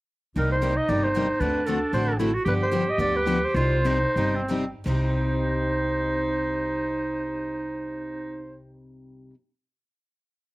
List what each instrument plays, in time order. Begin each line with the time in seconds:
0.36 upright bass C2, steel-string acoustic guitar C3 G3 A#3 D#4 G4, clarinet D#4 A#4
0.52 clarinet C5
0.61 steel-string acoustic guitar C3 G3 A#3 D#4 G4
0.77 clarinet D#5
0.88 upright bass G1, steel-string acoustic guitar C3 G3 A#3 D#4 G4, clarinet D5
1.03 clarinet C5
1.16 steel-string acoustic guitar C3 G3 A#3 D#4 G4
1.40 upright bass D2, steel-string acoustic guitar D3 A3 C4 F#4 A4, clarinet D4 B4
1.66 steel-string acoustic guitar D3 A3 C4 F#4 A4, clarinet A4
1.93 upright bass A1, steel-string acoustic guitar D3 A3 C4 F#4 A4, clarinet C5
2.19 steel-string acoustic guitar D3 A3 C4 F#4 A4, clarinet E4
2.34 clarinet F#4
2.45 upright bass G1, steel-string acoustic guitar D3 F3 B3 D4 G4, clarinet G4 B4
2.62 clarinet C5
2.72 steel-string acoustic guitar D3 F3 B3 D4 G4
2.89 clarinet D#5
2.98 upright bass D2, steel-string acoustic guitar D3 F3 B3 D4 G4, clarinet D5
3.16 clarinet B4
3.25 steel-string acoustic guitar D3 F3 B3 D4 G4
3.45 clarinet C5
3.54 upright bass C2, steel-string acoustic guitar C3 G3 C4 D#4 G4, clarinet F4
3.84 steel-string acoustic guitar C3 G3 C4 D#4 G4, clarinet D#4
4.16 upright bass G1, steel-string acoustic guitar C3 G3 C4 D#4 G4, clarinet D#4
4.36 clarinet C4
4.50 steel-string acoustic guitar C3 G3 C4 D#4 G4
4.86 upright bass C2, steel-string acoustic guitar C3 G3 C4 D#4 G4, clarinet D#4 C5